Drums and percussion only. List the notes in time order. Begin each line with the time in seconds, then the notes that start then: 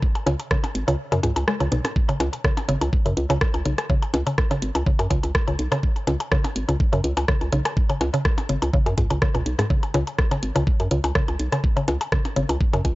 0.02 kick
0.15 closed hi-hat, percussion blips
0.27 closed hi-hat, percussion blips
0.40 closed hi-hat, percussion blips
0.51 kick, cross-stick
0.64 closed hi-hat, percussion blips
0.75 closed hi-hat
0.88 closed hi-hat, percussion blips
1.12 closed hi-hat, percussion blips
1.23 closed hi-hat, percussion blips
1.36 closed hi-hat, percussion blips
1.48 cross-stick
1.60 closed hi-hat, percussion blips
1.72 closed hi-hat
1.85 cross-stick, closed hi-hat, percussion blips
1.96 kick
2.09 closed hi-hat, percussion blips
2.20 closed hi-hat, percussion blips
2.33 closed hi-hat, percussion blips
2.44 kick, cross-stick
2.57 closed hi-hat, percussion blips
2.69 closed hi-hat
2.81 closed hi-hat, percussion blips
2.93 kick
3.06 closed hi-hat, percussion blips
3.17 closed hi-hat
3.30 closed hi-hat, percussion blips
3.41 kick, cross-stick
3.54 closed hi-hat, percussion blips
3.65 closed hi-hat
3.78 cross-stick, closed hi-hat, percussion blips
3.90 kick
4.02 closed hi-hat, percussion blips
4.14 closed hi-hat, percussion blips
4.27 closed hi-hat, percussion blips
4.38 kick, cross-stick
4.51 closed hi-hat, percussion blips
4.62 closed hi-hat
4.75 closed hi-hat, percussion blips
4.86 kick
4.99 closed hi-hat, percussion blips
5.10 kick, closed hi-hat, percussion blips
5.23 closed hi-hat, percussion blips
5.35 kick, cross-stick
5.48 closed hi-hat, percussion blips
5.59 closed hi-hat
5.72 cross-stick, closed hi-hat, percussion blips
5.83 kick
5.96 closed hi-hat, percussion blips
6.07 closed hi-hat, percussion blips
6.20 closed hi-hat, percussion blips
6.32 kick, cross-stick
6.44 closed hi-hat, percussion blips
6.56 closed hi-hat
6.69 closed hi-hat, percussion blips
6.80 kick
6.93 closed hi-hat, percussion blips
7.04 closed hi-hat
7.17 closed hi-hat, percussion blips
7.28 kick, cross-stick
7.41 closed hi-hat, percussion blips
7.52 closed hi-hat
7.65 cross-stick, closed hi-hat, percussion blips
7.77 kick
7.90 closed hi-hat, percussion blips
8.01 closed hi-hat, percussion blips
8.14 closed hi-hat, percussion blips
8.25 kick, cross-stick
8.38 closed hi-hat, percussion blips
8.49 closed hi-hat
8.62 closed hi-hat, percussion blips
8.73 kick
8.86 closed hi-hat, percussion blips
8.98 kick, closed hi-hat, percussion blips
9.10 closed hi-hat, percussion blips
9.22 kick, cross-stick
9.35 closed hi-hat, percussion blips
9.46 closed hi-hat
9.59 cross-stick, closed hi-hat, percussion blips
9.70 kick
9.83 closed hi-hat, percussion blips
9.94 closed hi-hat, percussion blips
10.07 closed hi-hat, percussion blips
10.19 kick, cross-stick
10.31 closed hi-hat, percussion blips
10.43 closed hi-hat
10.56 closed hi-hat, percussion blips
10.67 kick
10.80 closed hi-hat, percussion blips
10.91 closed hi-hat
11.04 closed hi-hat, percussion blips
11.15 kick, cross-stick
11.28 closed hi-hat, percussion blips
11.40 closed hi-hat
11.52 cross-stick, closed hi-hat, percussion blips
11.64 kick
11.77 closed hi-hat, percussion blips
11.88 closed hi-hat, percussion blips
12.01 closed hi-hat, percussion blips
12.12 kick, cross-stick
12.25 closed hi-hat, percussion blips
12.36 closed hi-hat
12.49 closed hi-hat, percussion blips
12.61 kick
12.73 closed hi-hat, percussion blips
12.85 kick, closed hi-hat, percussion blips